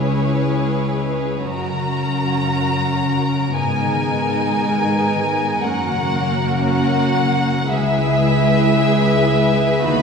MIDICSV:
0, 0, Header, 1, 6, 480
1, 0, Start_track
1, 0, Tempo, 1119403
1, 621, Tempo, 1071429
1, 1101, Tempo, 1036269
1, 1581, Time_signature, 4, 2, 24, 8
1, 3501, Tempo, 1079137
1, 4532, End_track
2, 0, Start_track
2, 0, Title_t, "Violin section"
2, 0, Program_c, 0, 48
2, 0, Note_on_c, 0, 73, 44
2, 616, Note_on_c, 0, 82, 65
2, 618, Note_off_c, 0, 73, 0
2, 1579, Note_off_c, 0, 82, 0
2, 1584, Note_on_c, 0, 80, 63
2, 2533, Note_off_c, 0, 80, 0
2, 2548, Note_on_c, 0, 78, 62
2, 3017, Note_off_c, 0, 78, 0
2, 3022, Note_on_c, 0, 78, 75
2, 3490, Note_off_c, 0, 78, 0
2, 3500, Note_on_c, 0, 76, 77
2, 4458, Note_on_c, 0, 83, 86
2, 4460, Note_off_c, 0, 76, 0
2, 4532, Note_off_c, 0, 83, 0
2, 4532, End_track
3, 0, Start_track
3, 0, Title_t, "Violin section"
3, 0, Program_c, 1, 48
3, 0, Note_on_c, 1, 68, 36
3, 0, Note_on_c, 1, 71, 36
3, 607, Note_off_c, 1, 68, 0
3, 608, Note_off_c, 1, 71, 0
3, 623, Note_on_c, 1, 70, 36
3, 627, Note_on_c, 1, 66, 36
3, 1584, Note_off_c, 1, 66, 0
3, 1589, Note_on_c, 1, 63, 42
3, 2554, Note_off_c, 1, 63, 0
3, 2556, Note_on_c, 1, 66, 41
3, 3500, Note_off_c, 1, 70, 0
3, 3501, Note_off_c, 1, 66, 0
3, 3504, Note_on_c, 1, 68, 52
3, 3507, Note_on_c, 1, 71, 51
3, 4444, Note_off_c, 1, 68, 0
3, 4459, Note_on_c, 1, 66, 50
3, 4532, Note_off_c, 1, 66, 0
3, 4532, Note_off_c, 1, 71, 0
3, 4532, End_track
4, 0, Start_track
4, 0, Title_t, "Harp"
4, 0, Program_c, 2, 46
4, 0, Note_on_c, 2, 49, 35
4, 0, Note_on_c, 2, 56, 26
4, 0, Note_on_c, 2, 61, 27
4, 14, Note_on_c, 2, 64, 26
4, 137, Note_on_c, 2, 71, 30
4, 253, Note_off_c, 2, 61, 0
4, 373, Note_off_c, 2, 56, 0
4, 378, Note_on_c, 2, 56, 29
4, 499, Note_on_c, 2, 61, 28
4, 620, Note_on_c, 2, 42, 34
4, 637, Note_off_c, 2, 64, 0
4, 641, Note_off_c, 2, 56, 0
4, 641, Note_off_c, 2, 71, 0
4, 642, Note_off_c, 2, 49, 0
4, 742, Note_on_c, 2, 49, 27
4, 858, Note_off_c, 2, 61, 0
4, 863, Note_on_c, 2, 61, 25
4, 984, Note_on_c, 2, 66, 31
4, 1102, Note_on_c, 2, 70, 32
4, 1219, Note_off_c, 2, 61, 0
4, 1225, Note_on_c, 2, 61, 29
4, 1340, Note_off_c, 2, 49, 0
4, 1345, Note_on_c, 2, 49, 31
4, 1462, Note_off_c, 2, 61, 0
4, 1467, Note_on_c, 2, 61, 28
4, 1585, Note_on_c, 2, 44, 40
4, 1600, Note_off_c, 2, 42, 0
4, 1601, Note_off_c, 2, 66, 0
4, 1603, Note_off_c, 2, 49, 0
4, 1604, Note_off_c, 2, 61, 0
4, 1707, Note_on_c, 2, 51, 31
4, 1829, Note_on_c, 2, 59, 36
4, 1949, Note_on_c, 2, 63, 31
4, 2070, Note_off_c, 2, 70, 0
4, 2076, Note_on_c, 2, 70, 34
4, 2190, Note_off_c, 2, 59, 0
4, 2195, Note_on_c, 2, 59, 32
4, 2308, Note_off_c, 2, 51, 0
4, 2313, Note_on_c, 2, 51, 32
4, 2428, Note_off_c, 2, 59, 0
4, 2434, Note_on_c, 2, 59, 33
4, 2555, Note_on_c, 2, 42, 41
4, 2570, Note_off_c, 2, 51, 0
4, 2570, Note_off_c, 2, 59, 0
4, 2570, Note_off_c, 2, 63, 0
4, 2571, Note_off_c, 2, 44, 0
4, 2671, Note_on_c, 2, 49, 31
4, 2790, Note_on_c, 2, 61, 33
4, 2910, Note_on_c, 2, 66, 35
4, 3020, Note_off_c, 2, 70, 0
4, 3025, Note_on_c, 2, 70, 35
4, 3138, Note_off_c, 2, 61, 0
4, 3144, Note_on_c, 2, 61, 38
4, 3258, Note_off_c, 2, 49, 0
4, 3263, Note_on_c, 2, 49, 38
4, 3381, Note_off_c, 2, 61, 0
4, 3386, Note_on_c, 2, 61, 40
4, 3502, Note_off_c, 2, 49, 0
4, 3508, Note_on_c, 2, 49, 47
4, 3519, Note_off_c, 2, 70, 0
4, 3520, Note_off_c, 2, 42, 0
4, 3521, Note_off_c, 2, 66, 0
4, 3616, Note_on_c, 2, 56, 38
4, 3732, Note_on_c, 2, 64, 43
4, 3851, Note_on_c, 2, 68, 35
4, 3977, Note_on_c, 2, 71, 42
4, 4092, Note_off_c, 2, 64, 0
4, 4097, Note_on_c, 2, 64, 43
4, 4207, Note_off_c, 2, 56, 0
4, 4212, Note_on_c, 2, 56, 38
4, 4330, Note_off_c, 2, 64, 0
4, 4335, Note_on_c, 2, 64, 38
4, 4455, Note_on_c, 2, 51, 52
4, 4477, Note_off_c, 2, 64, 0
4, 4478, Note_off_c, 2, 56, 0
4, 4479, Note_off_c, 2, 68, 0
4, 4482, Note_off_c, 2, 61, 0
4, 4483, Note_off_c, 2, 49, 0
4, 4532, Note_off_c, 2, 51, 0
4, 4532, Note_off_c, 2, 71, 0
4, 4532, End_track
5, 0, Start_track
5, 0, Title_t, "Viola section"
5, 0, Program_c, 3, 48
5, 0, Note_on_c, 3, 61, 33
5, 0, Note_on_c, 3, 64, 34
5, 602, Note_off_c, 3, 64, 0
5, 617, Note_off_c, 3, 61, 0
5, 622, Note_on_c, 3, 61, 35
5, 1582, Note_off_c, 3, 61, 0
5, 1582, Note_on_c, 3, 56, 39
5, 1582, Note_on_c, 3, 59, 37
5, 2532, Note_off_c, 3, 56, 0
5, 2532, Note_off_c, 3, 59, 0
5, 2548, Note_on_c, 3, 58, 43
5, 2548, Note_on_c, 3, 61, 43
5, 3497, Note_off_c, 3, 61, 0
5, 3497, Note_on_c, 3, 64, 48
5, 3498, Note_off_c, 3, 58, 0
5, 3499, Note_on_c, 3, 56, 49
5, 4441, Note_off_c, 3, 64, 0
5, 4442, Note_off_c, 3, 56, 0
5, 4454, Note_on_c, 3, 59, 49
5, 4455, Note_on_c, 3, 63, 48
5, 4532, Note_off_c, 3, 59, 0
5, 4532, Note_off_c, 3, 63, 0
5, 4532, End_track
6, 0, Start_track
6, 0, Title_t, "Cello section"
6, 0, Program_c, 4, 48
6, 0, Note_on_c, 4, 37, 37
6, 603, Note_off_c, 4, 37, 0
6, 622, Note_on_c, 4, 42, 38
6, 1582, Note_off_c, 4, 42, 0
6, 1585, Note_on_c, 4, 44, 45
6, 2534, Note_off_c, 4, 44, 0
6, 2552, Note_on_c, 4, 42, 44
6, 3499, Note_off_c, 4, 42, 0
6, 3499, Note_on_c, 4, 37, 51
6, 4457, Note_on_c, 4, 39, 52
6, 4460, Note_off_c, 4, 37, 0
6, 4532, Note_off_c, 4, 39, 0
6, 4532, End_track
0, 0, End_of_file